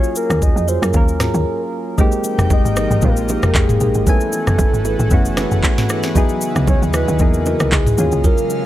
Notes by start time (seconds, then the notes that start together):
Already playing: F#3 A#3 C#4 F4 F#4 G#4 C#5
0.04 shaker
0.16 A#4, shaker
0.30 D#2, cross-stick, shaker
0.42 D#5, kick, shaker
0.56 F2, shaker
0.68 F4 F#4 G#4 C5 C#5, shaker
0.82 F#2 A#4, cross-stick, shaker
0.93 D#2 F#3 A#3 C#4 F4 A#4, kick, shaker
1.08 shaker
1.20 F4 F#4 G#4 C#5, cross-stick, snare, mid tom, shaker
1.34 D#2, shaker
1.98 F3 G#3 A#3 C4 D#4 G4 G#4 A#4 G5, kick, low conga, shaker
2.12 shaker
2.24 low bongo, shaker
2.38 F1, cross-stick, low bongo, shaker
2.50 D#5, kick, high bongo, low conga, shaker
2.65 G#1, shaker
2.76 D#4 G4 G#4 A#4, cross-stick, high bongo, shaker
2.91 G#1, low bongo, shaker
3.02 A#1 G#3 A#3 C4 D#4 F4 A#4, kick, low conga, shaker
3.17 shaker
3.28 D#4 G4 G#4 A#4, low bongo, shaker
3.43 F1, cross-stick, shaker
3.55 F1 G#4, kick, clap, high bongo, shaker
3.69 mid tom, shaker
3.80 A#1 D#4 G4 G#4 A#4, shaker
3.94 G#1, shaker
4.06 E3 A3 B3 C#4 E4 F#4 A4 B4 G#5, kick, low conga, shaker
4.20 shaker
4.33 low bongo, shaker
4.47 F#1, cross-stick, low bongo, shaker
4.58 kick, high bongo, low conga, shaker
4.73 G#1, shaker
4.85 E4 G#4 A4 B4, high bongo, shaker
4.99 A1, low bongo, shaker
5.10 F#1 A3 B3 C#4 E4 F#4, kick, low conga, shaker
5.25 shaker
5.37 E4 G#4 A4 B4, cross-stick, snare, low bongo, shaker
5.52 F#1, shaker
5.63 kick, clap, high bongo, shaker
5.78 snare, mid tom, shaker
5.89 E4 G#4 A4 B4, cross-stick, shaker
6.03 snare, shaker
6.15 C#3 F#3 B3 D#4 E4 F#4 G#4 B4 D#5, kick, low conga, shaker
6.29 shaker
6.41 low bongo, shaker
6.56 C#2, cross-stick, low bongo, shaker
6.67 C#5, kick, high bongo, low conga, shaker
6.82 D#2, shaker
6.93 E4 F#4 B4 D#5, cross-stick, high bongo, shaker
7.08 D#2, low bongo, shaker
7.19 E2 F#3 B3 D#4 E4 G#4 A#4, kick, low conga, shaker
7.34 shaker
7.46 E4 F#4 B4 D#5, low bongo, shaker
7.60 C#2, cross-stick, shaker
7.72 C#2 G#4, kick, clap, high bongo, shaker
7.86 mid tom, shaker
7.98 D#2 C#3 F#3 G#3 A#3 C#4 F4 F#4 G#4 C#5 F5, shaker
8.12 C#2, shaker
8.24 F4 F#4 G#4 A#4 C#5, kick, low conga, shaker
8.38 shaker
8.50 low bongo, shaker